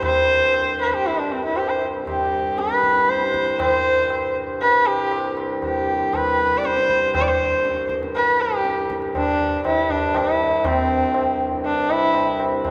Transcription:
Already playing: harmonium C2 G2
0.03 sarangi C5, tabla na, tabla ge
0.54 tabla na
0.81 sarangi B4
0.89 sarangi B4
0.94 sarangi G4
1.05 sarangi E4, tabla tin
1.19 sarangi D4
1.32 sarangi C4
1.45 sarangi E4
1.56 sarangi G4, tabla na
1.69 sarangi C5
1.82 tabla na
2.07 sarangi G4, tabla na, tabla ge
2.58 sarangi B4, tabla te
2.71 tabla te
2.84 tabla ke
2.96 tabla te
3.09 sarangi C5, tabla te
3.21 tabla te
3.34 tabla ke
3.47 tabla te
3.60 sarangi C5, tabla na, tabla ge
4.10 tabla na
4.62 sarangi B4, tabla tin
4.86 sarangi G4, tabla na
5.12 tabla na
5.37 tabla na
5.62 sarangi G4, tabla na, tabla ge
6.13 sarangi B4, tabla na, tabla ge
6.39 tabla te
6.58 sarangi D5
6.64 sarangi C5, tabla te
6.77 tabla te
6.89 tabla ke
7.02 tabla te
7.15 sarangi C5, tabla na, tabla ge
7.21 sarangi D5
7.28 sarangi C5
7.65 tabla te
7.78 tabla te
7.89 tabla ke
8.03 tabla te
8.15 sarangi B4, tabla tin
8.41 sarangi G4
8.65 tabla te
8.78 tabla te
8.90 tabla ke
9.02 tabla te
9.15 sarangi D4, tabla na, tabla ge
9.40 tabla ge
9.65 sarangi E4, tabla na, tabla ge
9.90 sarangi D4, tabla ge
10.14 sarangi E4, tabla na, tabla ge
10.40 tabla te
10.65 harmonium C2 G2, sarangi C4, tabla na, tabla ge
11.14 tabla na
11.65 sarangi D4, tabla tin
11.90 sarangi E4, tabla na
12.14 tabla na
12.40 tabla na
12.65 sarangi D4, tabla na, tabla ge

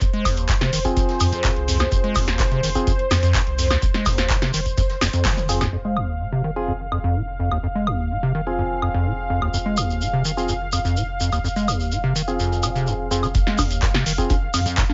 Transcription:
Already playing: analog synth pad C5
0.01 sub bass F1, acid bass F2, kick, closed hi-hat, shekere
0.13 acid bass G#3, closed hi-hat
0.25 acid bass D#2, kick, closed hi-hat, open hi-hat, high woodblock, shekere
0.37 sub bass F1, closed hi-hat, shekere
0.48 acid bass A#2, kick, snare, clap, closed hi-hat, shekere
0.61 acid bass C3, snare, closed hi-hat
0.73 sub bass F1, acid bass D#3, closed hi-hat, open hi-hat, shekere
0.85 synth stab C4 F4 G#4, kick, closed hi-hat, shekere
0.97 acid bass F2, kick, closed hi-hat, shekere
1.09 snare, closed hi-hat
1.20 acid bass F2, sub bass F2, closed hi-hat, open hi-hat, high woodblock, shekere
1.32 acid bass F2, closed hi-hat, shekere
1.44 acid bass A#2, kick, snare, clap, closed hi-hat, shekere
1.56 sub bass C2, closed hi-hat
1.68 acid bass F2, closed hi-hat, open hi-hat, shekere
1.79 acid bass D#2, snare, closed hi-hat, high woodblock, shekere
1.92 sub bass F1, acid bass F2, kick, closed hi-hat, shekere
2.04 acid bass G#3, closed hi-hat
2.15 acid bass D#2, kick, open hi-hat, high woodblock, shekere
2.28 sub bass F1, snare, closed hi-hat, shekere
2.39 acid bass A#2, kick, snare, clap, closed hi-hat, shekere
2.52 acid bass C3, closed hi-hat
2.63 sub bass F1, acid bass D#3, closed hi-hat, open hi-hat, shekere
2.75 synth stab C4 F4 G#4, kick, closed hi-hat, shekere
2.87 acid bass F2, kick, closed hi-hat, shekere
2.99 closed hi-hat
3.11 acid bass F2, sub bass F2, snare, closed hi-hat, open hi-hat, high woodblock, shekere
3.23 acid bass F2, closed hi-hat, shekere
3.35 acid bass A#2, kick, snare, clap, closed hi-hat, shekere
3.47 sub bass C2, closed hi-hat
3.58 acid bass F2, closed hi-hat, open hi-hat, shekere
3.70 acid bass D#2, snare, closed hi-hat, high woodblock, shekere
3.82 sub bass F1, acid bass F2, kick, closed hi-hat, shekere
3.94 acid bass G#3, snare, closed hi-hat
4.06 acid bass D#2, kick, snare, closed hi-hat, open hi-hat, high woodblock, shekere
4.18 sub bass F1, snare, closed hi-hat, shekere
4.29 acid bass A#2, kick, snare, clap, closed hi-hat, shekere
4.42 acid bass C3, snare, closed hi-hat, shekere
4.54 sub bass F1, acid bass D#3, closed hi-hat, open hi-hat, shekere
4.66 kick, closed hi-hat, shekere
4.77 acid bass F2, kick, closed hi-hat, shekere
4.89 snare, closed hi-hat
5.01 sub bass F1, acid bass F2, snare, closed hi-hat, open hi-hat, high woodblock, shekere
5.13 acid bass F2, closed hi-hat, shekere
5.25 acid bass A#2, kick, snare, clap, closed hi-hat, high tom, shekere
5.37 sub bass F1, closed hi-hat, high tom, shekere
5.49 acid bass F2, synth stab C4 F4 G#4, closed hi-hat, open hi-hat, shekere
5.61 acid bass D#2, snare, closed hi-hat, mid tom, high woodblock, shekere
5.73 sub bass F1, acid bass F2, analog synth pad F5
5.85 acid bass G#3
5.97 acid bass D#2, high woodblock
6.20 acid bass A#2
6.32 acid bass C3
6.44 acid bass D#3
6.56 synth stab C4 F4 G#4
6.68 acid bass F2
6.92 acid bass F2, high woodblock
7.04 acid bass F2
7.16 acid bass A#2
7.39 acid bass F2
7.52 acid bass D#2, high woodblock
7.63 acid bass F2
7.75 acid bass G#3
7.87 acid bass D#2, high woodblock
8.11 acid bass A#2
8.23 acid bass C3
8.35 acid bass D#3
8.47 synth stab C4 F4 G#4
8.59 acid bass F2
8.82 acid bass F2, high woodblock
8.94 acid bass F2
9.06 acid bass A#2
9.30 acid bass F2
9.42 acid bass D#2, high woodblock
9.54 acid bass F2, shekere
9.66 acid bass G#3
9.77 acid bass D#2, high woodblock, shekere
9.90 shekere
10.01 acid bass A#2, shekere
10.13 acid bass C3
10.25 acid bass D#3, shekere
10.37 synth stab C4 F4 G#4, shekere
10.49 acid bass F2, shekere
10.72 acid bass F2, high woodblock, shekere
10.85 acid bass F2, shekere
10.97 acid bass A#2, shekere
11.20 acid bass F2, shekere
11.32 acid bass D#2, high woodblock, shekere
11.44 acid bass F2, shekere
11.56 acid bass G#3, shekere
11.68 acid bass D#2, high woodblock, shekere
11.80 shekere
11.92 acid bass A#2, shekere
12.04 acid bass C3
12.16 acid bass D#3, shekere
12.27 synth stab C4 F4 G#4, shekere
12.39 acid bass F2, shekere
12.52 shekere
12.63 acid bass C3, high woodblock, shekere
12.75 acid bass C3, shekere
12.87 acid bass F2, shekere
13.11 acid bass F2, synth stab C4 F4 G#4, shekere
13.23 acid bass F3, high woodblock, shekere
13.35 sub bass F1, acid bass F2, analog synth pad F5, kick, closed hi-hat, shekere
13.47 acid bass G#3, snare
13.58 acid bass D#2, kick, closed hi-hat, open hi-hat, high conga, high woodblock, shekere
13.71 sub bass F1, closed hi-hat, shekere
13.82 acid bass A#2, kick, snare, clap, closed hi-hat, shekere
13.94 acid bass C3, snare
14.06 sub bass F1, acid bass D#3, closed hi-hat, open hi-hat, shekere
14.18 synth stab C4 F4 G#4, kick, closed hi-hat, shekere
14.30 acid bass F2, kick, closed hi-hat, high conga, shekere
14.54 acid bass F2, sub bass F2, closed hi-hat, open hi-hat, high woodblock, shekere
14.66 acid bass F2, closed hi-hat, shekere
14.77 acid bass A#2, kick, snare, clap, closed hi-hat, shekere
14.90 sub bass C2, snare, high conga

